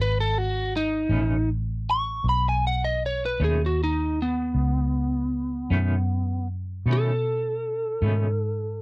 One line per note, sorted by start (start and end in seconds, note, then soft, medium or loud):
0.00 1.06 G#1 medium
0.00 0.17 B4 loud
0.20 0.38 A4 medium
0.38 0.73 F#4 loud
0.76 1.49 D#4 loud
1.09 2.21 A1 medium
1.09 1.34 B2 medium
1.09 1.34 D#3 medium
1.09 1.34 A3 medium
1.09 1.33 C#4 medium
1.91 2.26 C#6 medium
2.24 3.37 B1 medium
2.29 2.46 B5 medium
2.49 2.65 G#5 medium
2.67 2.84 F#5 medium
2.85 3.02 D#5 medium
3.06 3.23 C#5 loud
3.26 3.42 B4 medium
3.40 4.52 D#2 medium
3.40 3.64 B2 medium
3.40 3.64 D#3 medium
3.40 3.64 A3 medium
3.40 3.63 C#4 medium
3.44 3.61 G#4 loud
3.66 3.82 F#4 medium
3.84 4.19 D#4 medium
4.22 6.47 B3 medium
4.55 5.67 C#2 medium
5.70 6.83 F#2 loud
5.70 5.95 B2 medium
5.70 5.95 D#3 medium
5.70 5.94 A3 medium
5.70 5.94 C#4 medium
6.86 7.98 B2 medium
6.86 7.09 B2 medium
6.86 7.10 D#3 medium
6.86 7.10 A3 medium
6.86 7.10 C#4 medium
6.93 8.82 A4 medium
8.02 8.82 G#2 medium
8.02 8.26 B2 medium
8.02 8.25 D#3 medium
8.02 8.25 A3 medium
8.02 8.25 C#4 medium